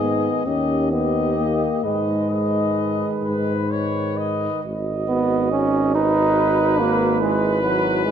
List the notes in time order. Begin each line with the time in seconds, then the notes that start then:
Already playing: G#2 D#3 G#4 D#5
0.01 B3
0.45 D#2 D#3 C#4 G4 D#5
0.91 D#3 B3 G4 D#5
1.38 A#3
1.83 G#2 D#3 G#3 B4 D#5
2.30 D#3 B4 D#5
3.22 G#2 B4
3.69 D#3 B4 C#5
4.18 D#5
4.64 G#1 F#4 D#5
5.08 B3
5.52 C#4
5.94 D#4 F#4 B4
6.79 A#3
7.20 G#3 E4 B4
7.62 F#3
8.05 G#3